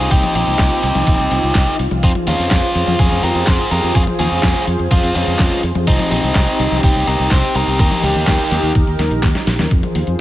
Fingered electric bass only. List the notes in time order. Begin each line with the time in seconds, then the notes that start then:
0.11 C2
0.35 A#1
0.47 C2
0.59 C2
0.83 C2
0.95 C2
1.07 A#1
1.19 C2
1.31 C2
1.43 C2
1.55 C2
1.79 C2
1.91 C2
2.03 F2
2.27 D#2
2.39 F2
2.51 F2
2.75 F2
2.87 F2
2.99 F2
3.11 F2
3.23 F2
3.35 F2
3.47 F2
3.71 F2
3.84 F2
3.95 F2
4.20 D#2
4.31 F2
4.43 F2
4.67 F2
4.79 F2
4.91 F2
5.03 F2
5.15 F2
5.27 F2
5.39 F2
5.63 F2
5.75 F2
5.87 C2
6.11 A#1
6.24 C2
6.35 C2
6.59 C2
6.71 C2
6.83 C2
6.96 C2
7.07 C2
7.19 C2
7.31 C2
7.55 C2
7.67 C2
7.79 D#2
8.03 C#2
8.15 D#2
8.27 D#2
8.51 D#2
8.63 D#2
8.75 D#2
8.87 D#2
8.99 D#2
9.11 A#1
9.23 D#2
9.47 A#1
9.59 D#2
9.71 F2
9.95 D#2
10.07 F2